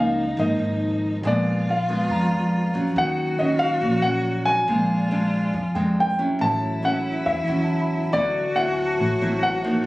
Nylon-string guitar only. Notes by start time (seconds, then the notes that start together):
Already playing: C#3 F3 A#3 D#4
0.38 G#2 F3 A#3 D#4
1.24 A#2 G#3 B3 D4
1.89 G#3 B3 D4
2.10 F3
2.74 F#3 C#4
2.97 D#3
3.39 F#3 C#4
3.82 A#2
4.03 F#3 C#4
4.68 A#2 G#3 C4 D4
5.11 G#3 C4 D4
5.54 F3
5.75 G#3 C4 D4
6.19 F#3 C#4 E4
6.40 A2
6.82 F#3 C#4 E4
7.26 E3
7.47 F#3 C#4 E4
8.13 D3 F#3 C4 E4
8.56 F#3 C4 E4
8.99 A2
9.21 F#3 C4 E4
9.64 F3 A#3 D#4